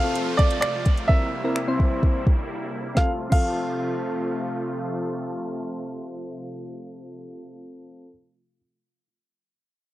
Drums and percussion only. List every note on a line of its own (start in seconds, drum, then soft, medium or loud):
0.15 closed hi-hat medium
0.39 kick loud
0.39 closed hi-hat medium
0.51 closed hi-hat medium
0.62 finger snap loud
0.62 closed hi-hat loud
0.86 kick medium
0.86 closed hi-hat medium
0.97 closed hi-hat soft
1.09 kick loud
1.56 finger snap loud
1.80 kick medium
2.03 kick medium
2.27 kick medium
2.97 kick loud
2.97 snare medium
3.32 kick loud
3.32 crash medium